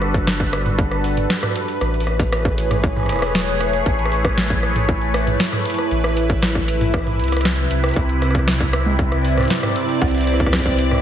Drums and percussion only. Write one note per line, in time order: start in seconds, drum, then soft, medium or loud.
0.02 cross-stick medium
0.14 kick medium
0.14 closed hi-hat medium
0.27 cross-stick soft
0.27 snare loud
0.27 closed hi-hat medium
0.40 kick medium
0.40 closed hi-hat soft
0.53 cross-stick medium
0.53 closed hi-hat loud
0.66 closed hi-hat medium
0.66 mid tom medium
0.79 kick loud
0.79 closed hi-hat medium
0.91 cross-stick medium
1.04 closed hi-hat soft
1.04 open hi-hat medium
1.17 closed hi-hat medium
1.17 mid tom medium
1.30 snare loud
1.30 closed hi-hat medium
1.43 cross-stick medium
1.43 closed hi-hat soft
1.43 mid tom medium
1.56 closed hi-hat loud
1.68 closed hi-hat medium
1.81 cross-stick medium
1.81 closed hi-hat medium
1.94 closed hi-hat soft
2.00 open hi-hat medium
2.07 cross-stick soft
2.19 kick medium
2.19 closed hi-hat medium
2.32 cross-stick medium
2.32 closed hi-hat medium
2.45 kick medium
2.45 closed hi-hat soft
2.58 closed hi-hat medium
2.71 cross-stick medium
2.71 closed hi-hat medium
2.71 mid tom medium
2.84 kick loud
2.84 closed hi-hat soft
2.96 cross-stick soft
2.96 closed hi-hat soft
2.96 mid tom medium
3.00 cross-stick soft
3.03 cross-stick soft
3.06 cross-stick soft
3.09 cross-stick soft
3.09 closed hi-hat medium
3.12 cross-stick soft
3.16 cross-stick soft
3.19 cross-stick soft
3.22 cross-stick medium
3.22 open hi-hat medium
3.35 snare loud
3.35 closed hi-hat medium
3.48 closed hi-hat soft
3.52 closed hi-hat soft
3.56 closed hi-hat soft
3.61 cross-stick medium
3.61 closed hi-hat loud
3.65 closed hi-hat soft
3.69 closed hi-hat soft
3.73 closed hi-hat medium
3.86 kick medium
3.86 closed hi-hat medium
3.99 closed hi-hat soft
4.05 cross-stick soft
4.12 open hi-hat medium
4.25 kick medium
4.25 cross-stick medium
4.25 closed hi-hat soft
4.37 snare loud
4.37 closed hi-hat soft
4.50 kick medium
4.50 closed hi-hat soft
4.63 cross-stick soft
4.76 closed hi-hat medium
4.76 mid tom loud
4.89 kick loud
4.89 cross-stick soft
4.89 closed hi-hat soft
5.01 closed hi-hat soft
5.14 cross-stick medium
5.14 open hi-hat medium
5.27 closed hi-hat medium
5.27 mid tom medium
5.40 snare loud
5.40 closed hi-hat soft
5.53 cross-stick soft
5.53 closed hi-hat soft
5.53 mid tom medium
5.65 closed hi-hat medium
5.70 closed hi-hat medium
5.74 closed hi-hat medium
5.78 cross-stick medium
5.78 closed hi-hat medium
5.91 closed hi-hat medium
6.04 cross-stick medium
6.04 closed hi-hat soft
6.17 closed hi-hat medium
6.30 kick medium
6.30 closed hi-hat soft
6.42 cross-stick medium
6.42 snare loud
6.42 closed hi-hat soft
6.55 kick medium
6.55 closed hi-hat soft
6.68 closed hi-hat medium
6.81 closed hi-hat medium
6.81 mid tom loud
6.94 kick loud
6.94 cross-stick medium
6.94 closed hi-hat soft
7.07 closed hi-hat soft
7.07 mid tom loud
7.19 closed hi-hat soft
7.24 closed hi-hat soft
7.28 closed hi-hat medium
7.32 cross-stick soft
7.32 closed hi-hat medium
7.32 open hi-hat medium
7.37 cross-stick soft
7.37 closed hi-hat medium
7.41 cross-stick soft
7.41 closed hi-hat medium
7.45 cross-stick soft
7.45 snare loud
7.45 closed hi-hat medium
7.49 cross-stick soft
7.54 cross-stick soft
7.58 closed hi-hat soft
7.71 closed hi-hat medium
7.84 cross-stick medium
7.84 closed hi-hat soft
7.86 closed hi-hat soft
7.89 closed hi-hat soft
7.91 closed hi-hat soft
7.94 closed hi-hat soft
7.96 kick medium
7.96 closed hi-hat medium
8.09 closed hi-hat soft
8.22 cross-stick medium
8.22 open hi-hat medium
8.31 cross-stick soft
8.35 kick medium
8.35 closed hi-hat medium
8.39 cross-stick soft
8.48 cross-stick medium
8.48 snare loud
8.48 closed hi-hat soft
8.50 closed hi-hat soft
8.53 closed hi-hat soft
8.55 closed hi-hat soft
8.58 kick medium
8.58 closed hi-hat soft
8.73 cross-stick medium
8.73 closed hi-hat medium
8.86 mid tom loud
8.99 kick loud
8.99 closed hi-hat medium
9.12 cross-stick medium
9.12 closed hi-hat soft
9.25 open hi-hat medium
9.37 cross-stick medium
9.37 closed hi-hat soft
9.37 mid tom medium
9.40 cross-stick soft
9.40 closed hi-hat soft
9.43 cross-stick soft
9.43 closed hi-hat soft
9.45 cross-stick soft
9.45 closed hi-hat soft
9.48 cross-stick soft
9.48 snare loud
9.48 closed hi-hat soft
9.50 cross-stick soft
9.50 closed hi-hat medium
9.57 cross-stick soft
9.60 cross-stick soft
9.63 cross-stick medium
9.63 closed hi-hat soft
9.63 mid tom loud
9.76 closed hi-hat loud
9.89 closed hi-hat medium
10.02 kick medium
10.02 cross-stick medium
10.02 closed hi-hat soft
10.05 closed hi-hat soft
10.08 closed hi-hat soft
10.11 closed hi-hat soft
10.14 closed hi-hat soft
10.18 closed hi-hat soft
10.21 closed hi-hat soft
10.24 cross-stick soft
10.24 closed hi-hat soft
10.24 open hi-hat medium
10.34 cross-stick soft
10.40 kick medium
10.40 cross-stick soft
10.46 kick medium
10.46 cross-stick soft
10.53 kick medium
10.53 cross-stick medium
10.53 snare loud
10.53 closed hi-hat medium
10.59 kick soft
10.66 kick medium
10.66 closed hi-hat soft
10.79 closed hi-hat loud
10.91 cross-stick medium
10.91 mid tom medium
10.95 cross-stick soft
10.98 cross-stick soft